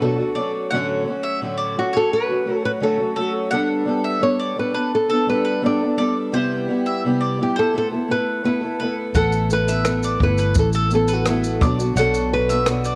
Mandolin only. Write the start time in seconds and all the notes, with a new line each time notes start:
0.35 D5
0.71 F#5
1.23 E5
1.58 D5
1.93 C#5
3.16 A4
3.51 F#5
4.04 E5
4.39 D5
4.74 B4
5.10 A4
5.45 B4
5.98 D5
6.34 C5
6.86 E5
7.21 D5
7.56 C5
8.80 B4
9.15 F#5
9.69 E5
10.04 D5
10.39 B4
10.75 A4
11.08 B4
11.61 D5
11.97 F#5
12.49 E5
12.85 D5